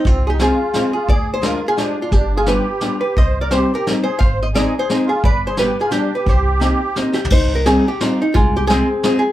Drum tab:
CC |------------------|------------------|------------------|------------------|
HH |x-----x-----x-----|x-----x-----x-----|x-----x-----x-----|x-----x-----x-----|
SD |------o-----o-----|------o-----o-----|------o-----o-----|------o-----o-----|
FT |------------------|------------------|------------------|------------------|
BD |o-----------------|o-----------------|o-----------------|o-----------------|

CC |------------------|------------------|------------------|x-----------------|
HH |x-----x-----x-----|x-----x-----x-----|x-----x-----x-----|------x-----x-----|
SD |------o-----o-----|------o-----o-----|------o-----o--o--|------o-----o-----|
FT |------------------|------------------|-----------------o|------------------|
BD |o-----------------|o-----------------|o-----------------|o-----------------|

CC |------------------|
HH |x-----x-----x-----|
SD |------o-----o-----|
FT |------------------|
BD |o-----------------|